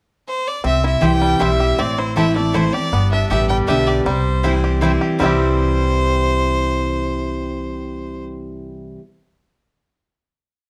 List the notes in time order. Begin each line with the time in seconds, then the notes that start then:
0.28 C5
0.48 D5
0.64 C2 C3 C4 E5
0.84 E4 E5
1.01 C2 E3 G3 C4 E4 G4 C5 G5
1.05 G5
1.22 G3
1.39 B1 E3 G3 C4 E4 C5 E5 G5
1.60 G4
1.79 A1 A2 C4 D5
1.98 E4 C5
2.16 E3 A3 C4 E4 G4 C5 E5 A5
2.36 A3 C4 E4 D5
2.54 E3 A3 C4 E4 C5 A5
2.73 C4 E4 G4 D5
2.92 G1 G2 B3
3.12 D4 E5
3.29 A1 D3 G3 B3 G4 D5 E5 G5
3.49 G3 G5
3.67 B1 D3 G3 B3 D4 G4 D5 E5 G5
3.87 G4 D5
4.06 C2 C3 G3 C5
4.43 E3 G3 C4 E4 C5 G5
4.64 G4
4.81 E3 G3 C4 E4 C5 G5
5.01 G4
5.19 C2 C3 E3 G3 C4 E4 C5 G5
5.23 E4 G4